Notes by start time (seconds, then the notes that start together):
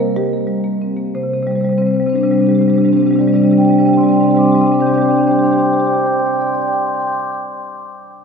Already playing: C3 A#4
0.00 A#3
0.16 G3 G4
0.33 A#3
0.47 G3
0.64 A#3
0.82 C4
0.97 A#3
1.15 C3 C5
1.22 C3 C5
1.29 C5
1.33 C3 C5
1.42 C3 C5
1.47 G3 C5
1.51 C3
1.56 G3 C5
1.61 C3 G3 C5
1.70 C3 G3 C5
1.78 C3 G3 C4 C5
1.86 C3 C4 C5
1.91 G3 C4 C5
1.96 C3 G3 C5
2.03 C4
2.07 C3 G3 C4 C5
2.13 C3 G3 D4 C5
2.18 C4 D4 C5
2.23 C3 G3 C4
2.28 G3 D4 C5
2.33 C3 C4 C5
2.38 G3 C4 D4
2.42 C3 D4 C5
2.47 G3 C4 G4 C5
2.51 C3 D4 G4
2.58 G3 C4 D4 C5
2.62 C3 G4
2.66 G3 C4 D4 C5
2.70 C3 G4 C5
2.74 G3 C4 D4 G4
2.78 C3 C4
2.83 G3 D4 G4 C5
2.88 C3 C4 C5
2.92 G3 D4 G4
2.97 C3 C4 D4 G4 C5
3.03 C3 G3 C4 C5
3.07 G3 D4 G4
3.13 C3 C4 D4 G4 C5
3.19 G3 C4 G4 C5 D5
3.24 C3 G3 D4 D5
3.28 C4 G4 C5
3.33 C3 G3 C4 D4 G4 C5 D5
3.40 C3 G3 D4 G4 C5 D5
3.45 C4 D4 D5
3.50 C3 G3 C4 G4 C5 D5
3.56 D4 G4 C5 D5 G5
3.60 C3 G3 C4 D4
3.65 C4 G4 C5 D5 G5
3.69 C3 G3 D4 G4 C5 G5
3.74 D5
3.78 C3 G3 C4 D4 G4 C5 D5 G5
3.85 C3 G3 C4 D4 G4 C5 D5 G5
3.93 G3 C4 D4 G4 C5 D5 G5 C6
3.98 C3 C4 G4 D5 G5
4.03 G3 D4 C5 G5 C6
4.07 C3 C4 G4 D5 C6
4.11 G3 D4 C5 D5 G5
4.16 C3 C4 G4 G5 C6
4.20 G3 D4 G4 C5 D5 C6
4.24 C3 C4 D4 C5 G5
4.29 G3 C4 G4 D5 C6
4.33 C3 G3 D4 C5 D5 G5 C6
4.37 C4 G4 G5 D6
4.42 C3 G3 D4 G4 C5 D5 C6 D6
4.47 C4 D4 C5 D5 G5 C6
4.52 C3 G3 C4 G4 D5 G5 C6 D6
4.58 C3 D4 G4 C5 D5 G5 C6 D6
4.63 G3 C4 D4 G4 C5 C6 D6
4.68 G3 C4 D5 G5
4.72 D4 G4 C5 D5 G5 C6 D6
4.79 G3 C4 D4 G4 C5 D5 G5 C6 D6 G6
4.85 G3 C4 D4 G4 C5 D5 G5 C6 D6 G6
4.92 C4 D4 G4 C5 D5 G5 C6 D6 G6
4.97 G3 G4 D5 G5 C6 D6 G6
5.02 C4 D4 C5 C6 D6 G6
5.08 C4 D4 G4 D5 G5
5.12 C5 D5 C6 D6 G6
5.16 C4 D4 G4 C5 G5 C6 D6 G6
5.22 G4 D5 G5 C6 D6 G6
5.27 C4 D4 G4 C5 D5 G5
5.31 C5 D5 G5 C6 D6 G6
5.36 D4 G4 C6 D6 G6
5.40 D4 C5 D5 G5 C6
5.45 G4 D5 G5 D6 G6
5.50 D4 G4 C5 D5 C6 D6 G6
5.55 D4 G4 C5 D5 G5 C6 G6
5.59 G5 D6 G6
5.64 G4 C5 D5 C6 D6 G6
5.70 G4 C5 D5 G5 C6 D6
5.75 G5 C6 G6
5.79 G4 C5 D5 D6 G6
5.84 G4 C5 D5 G5 C6 D6 G6
5.91 G4 D5 G5 C6 D6 G6
5.96 C5 G5 C6 D6
6.00 C5 D5 G6
6.05 D5 G5 C6 D6 G6
6.11 C5 D5 G5 C6 D6 G6
6.19 C5 D5 G5 C6 D6 G6
6.25 C5 D5 G5 C6 D6 G6
6.30 D5 G5 C6 D6 G6
6.34 C5 G6
6.39 D5 G5 C6 D6 G6
6.45 D5 G5 C6 D6 G6
6.52 D5 G5 C6 D6 G6
6.58 D5 G5 C6 D6 G6
6.66 D5 G5 C6 D6 G6
6.73 G5 C6 D6 G6
6.80 G5 C6 D6 G6
6.86 G5 C6 D6 G6
6.93 G5 C6 D6 G6
7.00 G5 C6 D6 G6
7.07 G5 C6 D6 G6
7.13 C6 D6 G6
7.19 C6 D6 G6
7.25 C6 D6 G6
7.32 C6 D6 G6